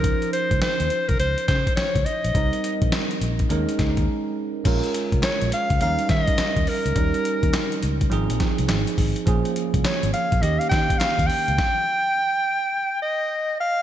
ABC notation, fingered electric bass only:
X:1
M:4/4
L:1/16
Q:"Swing 16ths" 1/4=104
K:Ebmix
V:1 name="Fingered electric bass" clef=bass
D,, z2 D,, z E,, z C,, D,, z D, z2 D,, z B,,, | C,, z2 B,,, z2 B,,,2 E,, z D,, E,, z4 | B,,, z2 C,, z B,,, z D,, E,, z E, z2 E,, z D,, | E,, z2 E,, z2 D,,2 A,,, B,,, z C,, A,,, z A,,, z |
B,,, z2 C,, z A,,, z B,,, E,, z E, z2 E,, z D,, | z16 |]